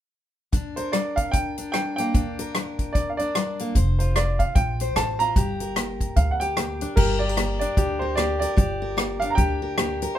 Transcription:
0.52 G2 D4, kick, closed hi-hat
0.76 A#4 C5, closed hi-hat
0.92 G3 D5, cross-stick, closed hi-hat
1.16 F5, kick, closed hi-hat
1.31 D3 G5, kick, closed hi-hat
1.58 D4, closed hi-hat
1.72 G3 G5, cross-stick, closed hi-hat
1.96 A#3 G5, closed hi-hat
2.14 G2 D4, kick, closed hi-hat
2.39 A#4, closed hi-hat
2.55 G3, cross-stick, closed hi-hat
2.79 kick, closed hi-hat
2.93 D3 D5, kick, closed hi-hat
3.10 F5
3.17 D4 D5, closed hi-hat
3.35 G3, cross-stick, closed hi-hat
3.59 A#3, closed hi-hat
3.75 F1 F3 C5, kick, closed hi-hat
3.99 F4 C5, closed hi-hat
4.16 A3 D5, cross-stick, closed hi-hat
4.39 F5, kick, closed hi-hat
4.55 A#1 C3 G5, kick, closed hi-hat
4.80 C5, closed hi-hat
4.96 A1 A3 A5, cross-stick, closed hi-hat
5.19 F4 A#5, closed hi-hat
5.36 G1 G2 G4, kick, closed hi-hat
5.60 A#4, closed hi-hat
5.76 A#3, cross-stick, closed hi-hat
6.01 kick, closed hi-hat
6.16 D2 G2 F5, kick, closed hi-hat
6.31 F#5
6.40 G4 G5, closed hi-hat
6.57 A#3, cross-stick, closed hi-hat
6.81 D4, closed hi-hat
6.96 G1 G2 G4 A#4, kick, crash
7.19 G4 D5
7.29 A#4
7.37 A#3, cross-stick, closed hi-hat
7.59 D4 D5, closed hi-hat
7.77 D2 G2 G4, kick, closed hi-hat
7.99 A#4 C5
8.15 A#3 G4 D5, cross-stick, closed hi-hat
8.40 A#4 D5, closed hi-hat
8.57 G1 G2 G4, kick, closed hi-hat
8.82 A#4
8.97 A#3, cross-stick, closed hi-hat
9.20 D4 F5, closed hi-hat
9.30 A#5
9.35 D2 G2 G4 G5, kick, closed hi-hat
9.62 A#4
9.78 A#3 G4, cross-stick, closed hi-hat
10.02 A#4, closed hi-hat
10.15 C5

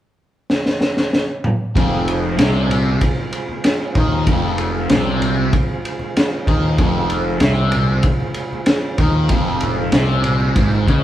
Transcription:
0.50 snare
0.66 snare
0.81 snare
0.97 snare
1.13 snare
1.44 mid tom
1.75 F1 F2 G#3 C4 F4, kick, ride
2.06 ride, high conga
2.37 C2 C3, snare, ride
2.69 ride, low conga
2.85 high conga
3.01 kick, ride, high conga
3.18 high conga
3.33 ride
3.49 high conga
3.64 snare, ride
3.95 D#2 D#3, kick, ride, low conga
4.27 F1 F2, kick, ride
4.58 ride, high conga
4.90 C2 C3, snare, ride
5.21 ride, low conga
5.37 high conga
5.52 kick, ride, high conga
5.68 high conga
5.85 ride
5.99 high conga
6.17 snare, ride
6.47 D#2 D#3, kick, ride, low conga
6.78 F1 F2, kick, ride
7.10 ride, high conga
7.40 C2 C3, snare, ride
7.72 ride, low conga
7.89 high conga
8.03 kick, ride, high conga
8.20 high conga
8.34 ride
8.53 high conga
8.66 snare, ride
8.98 D#2 D#3, kick, ride, low conga
9.29 F1 F2, kick, ride, low conga
9.61 ride, high conga, low conga
9.92 C2 C3, snare, ride
10.24 ride, low conga
10.41 high conga
10.55 G#1 G#2, kick, ride
10.72 high conga
10.87 C#2 C#3, kick, ride

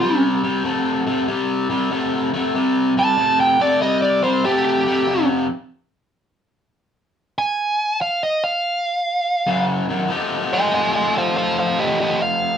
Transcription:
Already playing: F4
0.02 C3 G3
0.43 C3 G3
0.64 C3 A3
1.07 C3 A3
1.27 C3 G3
1.69 C3 G3
1.91 C3 A3
2.34 C3 A3
2.55 C3 G3
2.97 C3 G3 A5
3.18 C3 A3
3.40 G5
3.60 C3 A3 D5
3.81 C3 G3 D#5
4.02 D5
4.23 C3 G3 C5
4.44 C3 A3 G4
4.65 G4
4.86 C3 A3
5.07 F2 C3
7.38 G#5
8.01 F5
8.23 D#5
8.44 F5
9.47 F#2 C#3
9.89 F#2 D#3
10.09 F3 A3 D#4 G4
10.53 D#5 G#5
10.74 D#5 G#5
10.95 D#5 G#5
11.18 C5 F5
11.37 C5 F5
11.59 C5 F5
11.79 G4 D#5
12.00 G4 D#5
12.22 F5

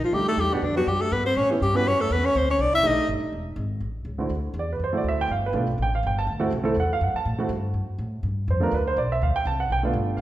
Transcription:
0.03 F3 F4, muted upright bass stroke
0.12 D2 G3 A3 D4 D#4 G4
0.28 A3 A4
0.37 E2 G3 G4
0.52 B2 B3 D4 F#4 G4
0.62 F2 D3 D4
0.75 F#3 B3 D4 F#4 G4
0.87 F#2 G3 G4
1.01 A3 A4
1.12 G2 B3 B4
1.26 C4 C5
1.36 A2 C#4 C#5
1.49 E3 B3 C#4 E4 G4
1.62 G2 G3 G4
1.74 B3 C#4 E4 F#4 B4
1.86 F#2 C#4 C#5
2.00 A3 A4
2.10 E2 B3 B4
2.24 C#4 C#5
2.35 D2 C4 C5
2.50 C#4 C#5
2.59 C2 D4 D5
2.73 E4 E5
2.83 B1 A3 D4 D#4 G4 D#5
2.97 muted upright bass stroke
3.07 G1
3.22 muted upright bass stroke
3.32 E1
3.56 G#1
3.80 A1
4.05 C#2
4.18 D3 A3 C4 E4 F#4
4.29 D2
4.54 E2
4.59 D5
4.73 B4
4.79 F#2
4.84 C5
4.93 A3 C4 E4 F#4
4.97 D5
5.04 D2
5.08 E5
5.21 G5
5.28 G1 F5
5.46 B4
5.53 B1 A3 B3 D4 F4
5.78 A1
5.82 G5
5.95 F5
6.03 G1 G5
6.18 A5
6.27 D2
6.40 A3 C4 E4 F#4
6.52 C2
6.64 A3 C4 E4 A4
6.76 E2 F#5
6.93 F5
7.01 F#2 F#5
7.14 A5, muted upright bass stroke
7.25 A2
7.39 A3 C4 E4 F#4, muted upright bass stroke
7.49 G2
7.74 F#2
7.98 A2
8.23 G2
8.48 F2 C5
8.60 A3 B3 D4 F4 A#4
8.72 D2 B4
8.87 C5
8.96 B1 D5
9.12 E5
9.22 D2 F5
9.36 G5, muted upright bass stroke
9.45 C2 A5
9.60 F#5
9.70 B1 G5
9.83 A3 B3 D4 F4
9.94 G1
10.17 F5

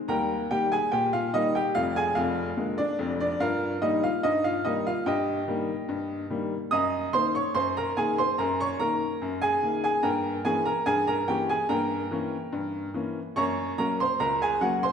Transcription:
0.08 D#2 G3 A#4 G5 A#5
0.51 D#3 G3 A#3 G4 G5
0.72 G#4 G#5
0.92 A#2 G4 G5
1.13 F4 F5
1.33 D#3 G3 A#3 D#4 D#5
1.55 G4 G5
1.75 F1 F2 F4 F5
1.96 G#4 G#5
2.15 F1 F2 F4 F5
2.57 D3 G#3 A#3
2.78 D4 D5
2.99 F1 F2
3.20 D4 D5
3.40 G2 F4 A#4 F5
3.82 D#3 G3 A#3 D#4 D#5
4.04 F4 F5
4.23 G2 D#4 D#5
4.44 F4 F5
4.65 D#3 G3 A#3 D#4 D#5
4.87 F4 F5
5.06 G2 G4 D#5 G5
5.48 D#3 G3 A#3
5.89 G2
6.30 D#3 G3 A#3
6.71 F#2 D#5 A#5 D#6
7.13 D#3 A#3 C5 C6
7.35 C#5 C#6
7.55 F#2 C5 C6
7.77 A#4 A#5
7.97 D#3 A#3 G#4 G#5
8.18 C5 C6
8.38 F#2 A#4 A#5
8.60 C#5 C#6
8.79 D#3 A#3 A#4 A#5
9.22 F#2
9.42 G#4 G#5
9.63 D#3 A#3
9.84 G#4 G#5
10.03 G2 A#3 A#4 G5 A#5
10.45 E3 A#3 C#4 G#4 G#5
10.65 A#4 A#5
10.86 G2 G#4 G#5
11.07 A#4 A#5
11.28 E3 A#3 C#4 G4 G5
11.49 G#4 G#5
11.69 G2 A#3 A#4 G5 A#5
12.11 E3 A#3 C#4
12.52 G2
12.94 E3 A#3 C#4
13.36 F#2 A#3 C#5 A#5 C#6
13.78 F#3 A#3 C#4 A#4 A#5
14.00 C5 C6
14.20 C#2 A#4 A#5
14.42 G#4 G#5
14.61 F#3 A#3 C#4 F#4 F#5
14.83 C5 C6

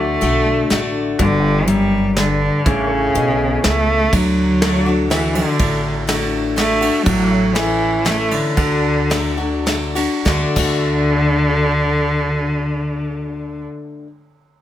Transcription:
Already playing: D2 D3 A3 F#4 A4 D5
0.21 B1 D3 A3 D4 F#4, closed hi-hat
0.70 A1 D3 A3 D4 F#4, snare, closed hi-hat
1.19 G1 G2 D3 F#4 B4 D5, kick, closed hi-hat
1.39 G4
1.68 F#2 G3, closed hi-hat
2.17 G2 D3, snare, closed hi-hat
2.65 A1 A2 C#3 E4 B4 D5, kick, closed hi-hat
2.87 C#5
2.92 A4
3.15 B1 B2, closed hi-hat
3.64 C#2 C#3 A3, snare, closed hi-hat
4.13 D2 D3 F#3, kick, ride
4.62 D3 A3 D4 E4 F#4 A4 C#5, snare, ride
4.84 F#4 D5
4.88 D4
5.10 D3 E3 A3 D4 F#4, snare, ride
5.34 D3, ride
5.59 A1 A2, kick, ride
6.07 D3 A3 D4 F#4, snare, ride
6.56 D3 A3 D4 F#4, snare, ride
6.81 D4 F#4, ride
7.06 A1 A2 F#3 F#4 A4 D5, kick, ride
7.21 F4
7.28 E4 C#5
7.55 E3 A3 C#4 E4, snare, ride
8.05 E3 A3 C#4 E4, snare, ride
8.31 D3, ride
8.57 D2 D3 F#4 A4 D5, kick, ride
9.10 D3 A3 D4 F#4, snare, ride
9.38 D4 F#4
9.66 D3 A3 D4 F#4, snare, ride
9.95 D4 F#4, ride
10.25 D2 D3 A3 D4 F#4 A4 D5, kick, snare
10.56 D2 D3 A3 D4 F#4, kick, crash

